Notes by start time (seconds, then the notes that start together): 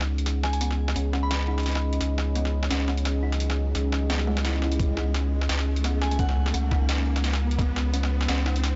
Already playing: C#2 C#4 G#4 D#5, riser
0.01 snare
0.18 closed hi-hat
0.26 snare, closed hi-hat
0.43 G#5, snare
0.53 G#5, closed hi-hat
0.61 B3, closed hi-hat
0.71 snare
0.88 snare
0.96 C#2 C#4, closed hi-hat
1.13 C#4, snare
1.23 B5
1.31 snare, closed hi-hat
1.48 D#4
1.58 snare, closed hi-hat
1.60 closed hi-hat
1.63 snare, closed hi-hat
1.66 closed hi-hat
1.69 closed hi-hat
1.71 snare, closed hi-hat
1.93 closed hi-hat
2.01 C#2, snare, closed hi-hat
2.18 G#5, snare
2.35 B3, closed hi-hat
2.45 snare
2.63 snare
2.70 C#2 C#4, snare, closed hi-hat
2.88 C#4, snare
2.97 closed hi-hat
3.05 snare, closed hi-hat
3.23 D#4
3.32 snare, closed hi-hat
3.40 closed hi-hat
3.50 snare, closed hi-hat
3.75 C#2, snare, closed hi-hat
3.92 snare
4.10 B3, snare, closed hi-hat
4.19 snare
4.27 G#3
4.37 snare, closed hi-hat
4.45 E4, snare, closed hi-hat
4.62 E4, snare
4.72 closed hi-hat
4.79 C#2 C#4, kick, closed hi-hat
4.97 D#4, snare
5.14 snare, closed hi-hat
5.41 snare
5.49 C#2, snare, closed hi-hat
5.59 snare
5.76 closed hi-hat
5.84 B3, snare, closed hi-hat
6.01 G#5, snare
6.11 G#5, closed hi-hat
6.19 C#4 F#5, kick, closed hi-hat
6.29 snare
6.46 snare
6.54 C#2 C#4, closed hi-hat
6.71 D#4, kick, snare
6.89 snare, closed hi-hat
7.16 snare, closed hi-hat
7.24 snare, closed hi-hat
7.33 snare
7.51 closed hi-hat
7.58 C#2 B3, kick, snare, closed hi-hat
7.76 F#5, snare
7.93 C#4, closed hi-hat
8.03 snare
8.21 snare
8.28 C#2 C#4, snare, closed hi-hat
8.46 D#4, snare
8.56 closed hi-hat
8.64 snare, closed hi-hat